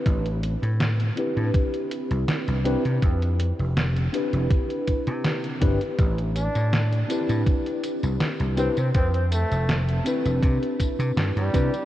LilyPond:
<<
  \new Staff \with { instrumentName = "Tine electric piano" } { \time 4/4 \key c \major \tempo 4 = 81 r4. <c' d' e' g' b'>2 <c' d' e' g' b'>8 | r4. <c' d' e' g' b'>2 <c' d' e' g' b'>8 | r4. <c' d' e' g' b'>2 <c' d' e' g' b'>8 | r4. <c' d' e' g' b'>2 <c' d' e' g' b'>8 | }
  \new Staff \with { instrumentName = "Flugelhorn" } { \time 4/4 \key c \major r1 | r1 | r8 d'8 r2 r8 c'16 c'16 | c'16 c'16 a8 r2 r16 g8. | }
  \new Staff \with { instrumentName = "Slap bass" } { \clef bass \time 4/4 \key c \major a,,8. a,8. r16 a,16 r8. c,16 r16 c,16 r16 c16 | f,8. f,,8. r16 f,,16 r8. c8. g,,16 r16 | a,,8. a,8. r16 a,16 r8. c,16 r16 c,16 r16 c16 | f,8. f,,8. r16 f,,16 c16 r8 c16 g,16 g,16 c16 r16 | }
  \new DrumStaff \with { instrumentName = "Drums" } \drummode { \time 4/4 <hh bd>16 hh16 hh16 hh16 <hh sn>16 hh16 hh16 hh16 <hh bd>16 hh16 hh16 hh16 <hh sn>16 hh16 hh16 hh16 | <hh bd>16 hh16 hh16 hh16 <hh sn>16 hh16 hh16 hh16 <hh bd>16 hh16 <hh bd>16 hh16 <hh sn>16 hh16 <hh bd>16 hh16 | <hh bd tamb>16 hh16 <hh tamb>16 <hh tamb>16 <hh sn tamb>16 hh16 <hh tamb>16 <hh tamb>16 <hh bd tamb>16 hh16 <hh tamb>16 <hh tamb>16 <hh sn tamb>16 hh16 <hh tamb>16 <hh tamb>16 | <hh bd tamb>16 hh16 <hh tamb>16 <hh tamb>16 <hh sn tamb>16 hh16 <hh tamb>16 <hh tamb>16 <hh bd tamb>16 hh16 <hh bd tamb>16 <hh tamb>16 <hh sn tamb>16 hh16 <hh bd tamb>16 <hh tamb>16 | }
>>